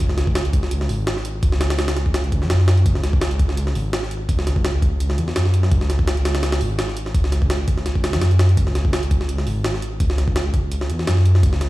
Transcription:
0.00 detuned saw bass C#2
0.09 snare
0.18 snare, closed hi-hat
0.27 kick
0.35 snare, closed hi-hat
0.45 closed hi-hat
0.53 kick, closed hi-hat
0.63 snare
0.71 closed hi-hat
0.81 snare
0.89 detuned saw bass G#1, open hi-hat
1.07 snare, closed hi-hat
1.17 snare
1.25 closed hi-hat
1.43 detuned saw bass C#2, kick, closed hi-hat
1.52 snare
1.61 snare, closed hi-hat
1.70 snare, closed hi-hat
1.79 snare, closed hi-hat
1.88 snare, closed hi-hat
1.97 snare, closed hi-hat
2.06 kick
2.14 snare, closed hi-hat
2.24 closed hi-hat
2.32 detuned saw bass C#2, kick, closed hi-hat
2.42 detuned saw bass F#2, snare
2.50 snare, closed hi-hat
2.60 snare
2.68 snare, closed hi-hat
2.77 closed hi-hat
2.86 detuned saw bass C#2, kick, closed hi-hat
2.95 snare
3.04 snare, closed hi-hat
3.13 kick
3.21 snare, closed hi-hat
3.31 closed hi-hat
3.39 kick, closed hi-hat
3.49 snare
3.57 closed hi-hat
3.67 snare
3.75 detuned saw bass G#1, open hi-hat
3.93 snare, closed hi-hat
4.03 snare
4.11 closed hi-hat
4.29 detuned saw bass C#2, kick, closed hi-hat
4.39 snare
4.47 snare, closed hi-hat
4.56 kick
4.65 snare, closed hi-hat
4.82 kick, closed hi-hat
5.00 closed hi-hat
5.10 snare
5.18 detuned saw bass E2, closed hi-hat
5.28 snare
5.36 detuned saw bass F#2, snare, closed hi-hat
5.45 snare
5.54 closed hi-hat
5.63 snare
5.71 detuned saw bass C#2, kick, closed hi-hat
5.81 snare
5.90 snare, closed hi-hat
5.99 kick
6.08 snare, closed hi-hat
6.17 closed hi-hat
6.25 snare, closed hi-hat
6.35 snare, closed hi-hat
6.43 snare, closed hi-hat
6.52 snare, closed hi-hat
6.61 detuned saw bass G#1, open hi-hat
6.79 snare, closed hi-hat
6.88 snare
6.97 closed hi-hat
7.06 snare
7.14 detuned saw bass C#2, kick, closed hi-hat
7.24 snare
7.32 snare, closed hi-hat
7.42 kick
7.50 snare, closed hi-hat
7.68 kick, closed hi-hat
7.78 snare
7.86 snare, closed hi-hat
7.95 kick
8.04 detuned saw bass C#2, snare, closed hi-hat
8.13 detuned saw bass F#2, snare, closed hi-hat
8.21 snare, closed hi-hat
8.31 closed hi-hat
8.39 snare, closed hi-hat
8.49 closed hi-hat
8.57 detuned saw bass C#2, kick, closed hi-hat
8.67 snare
8.75 snare, closed hi-hat
8.85 kick
8.93 snare, closed hi-hat
9.03 closed hi-hat
9.11 kick, closed hi-hat
9.21 snare
9.29 closed hi-hat
9.38 snare
9.47 detuned saw bass G#1, open hi-hat
9.64 snare, closed hi-hat
9.74 snare
9.82 closed hi-hat
10.00 detuned saw bass C#2, kick, closed hi-hat
10.10 snare
10.18 snare, closed hi-hat
10.28 kick
10.36 snare, closed hi-hat
10.54 kick, closed hi-hat
10.72 closed hi-hat
10.81 snare
10.90 detuned saw bass E2, closed hi-hat
10.99 snare
11.07 detuned saw bass F#2, snare, closed hi-hat
11.17 snare
11.25 closed hi-hat
11.35 snare
11.43 detuned saw bass C#2, kick, closed hi-hat
11.53 snare
11.61 snare, closed hi-hat

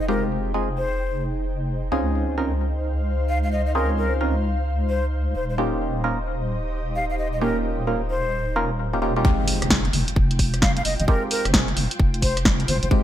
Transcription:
Already playing: wobble bass F1, ambient pad D#4 G#4 G5, string machine D#4 C5
0.00 flute D#5
0.09 synth stab G#3 C4 D#4 F4 G4, flute A#4
0.54 synth stab G#3 C4 D#4 F4 G#4
0.77 flute C5
1.92 wobble bass C#2, synth stab C4 C#4 D#4 F4 G#4
2.17 ambient pad F5
2.27 ambient pad C5
2.38 synth stab C4 C#4 D#4 F4 A#4
3.29 flute F5
3.44 flute F5
3.52 flute D#5
3.66 flute D#5
3.75 synth stab C4 C#4 D#4 F4 G#4, flute A#4
3.98 flute A#4
4.21 synth stab C4 C#4 D#4 F4 A#4
4.89 flute C5
5.35 wobble bass D#1, flute C5
5.50 flute C5, ambient pad D#5
5.58 synth stab A#3 C#4 D#4 F4 G4
5.68 ambient pad G4
6.04 synth stab A#3 C#4 D#4 F4 A#4
6.96 flute F5
7.10 flute F5
7.19 flute D#5
7.33 flute D#5
7.41 synth stab A#3 C#4 D#4 F4 G4, flute A#4
7.87 synth stab A#3 C#4 D#4 F4 A#4
8.10 flute C5
8.56 synth stab A#3 C#4 D#4 F4 A#4
8.93 synth stab A#3 C#4 D#4 F4 G4
9.02 synth stab A#3 C#4 D#4 F4 G4
9.16 synth stab A#3 C#4 D#4 F4 G4
9.25 synth stab G#3 C4 D#4 F4 G4, string machine F4 G5, kick, impact
9.48 open hi-hat
9.62 wobble bass F1, cross-stick, closed hi-hat
9.70 synth stab G#3 C4 D#4 F4 G#4, kick, snare
9.85 closed hi-hat
9.93 wobble bass F1, open hi-hat
10.08 closed hi-hat
10.16 wobble bass F1, kick
10.31 closed hi-hat
10.39 kick, open hi-hat
10.54 cross-stick, closed hi-hat
10.62 flute F5, kick, snare
10.77 flute F5, closed hi-hat
10.85 wobble bass F1, flute D#5, open hi-hat
11.00 wobble bass F1, flute D#5, closed hi-hat
11.08 synth stab G#3 C4 D#4 F4 G4, flute A#4, kick
11.31 flute A#4, open hi-hat
11.45 wobble bass F1, cross-stick, closed hi-hat
11.54 synth stab G#3 C4 D#4 F4 G#4, kick, snare
11.68 closed hi-hat
11.77 wobble bass F1, open hi-hat
11.91 closed hi-hat
12.00 wobble bass F1, kick
12.14 closed hi-hat
12.22 flute C5, kick, open hi-hat
12.37 cross-stick, closed hi-hat
12.45 kick, snare
12.60 closed hi-hat
12.68 wobble bass F1, flute C5, open hi-hat
12.83 wobble bass F1, flute C5, closed hi-hat
12.91 synth stab G#3 C4 D#4 F4 G4, kick

